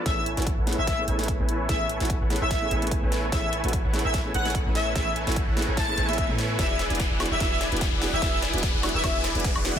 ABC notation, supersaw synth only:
X:1
M:4/4
L:1/16
Q:"Swing 16ths" 1/4=147
K:A
V:1 name="Supersaw synth"
[EABcg]3 [EABcg]2 [EABcf]2 [EABcg]3 [EABcg]3 [EABcg]3 | [EABcg]3 [EABcg]2 [EABcf]2 [EABcg]3 [EABcg]3 [EABcg]3 | [EABcg]3 [EABcg]2 [EABcf]2 [EABcg]3 [EABcg]3 [EABcg]3 | [EABcg]3 [EABcg]2 [EABcf]2 [EABcg]3 [EABcg]3 [EABcg]3 |
[EGBdg]3 [EGBdg]2 [EGBdf]2 [EGBdg] [EGBdg]3 [EGBdg]2 [EGBdf]2 [EGBdg] | [EGBdg]3 [EGBdg]2 [EGBdf]2 [EGBdg] [EGBdg]3 [EGBdg]2 [EGBdf]2 z |]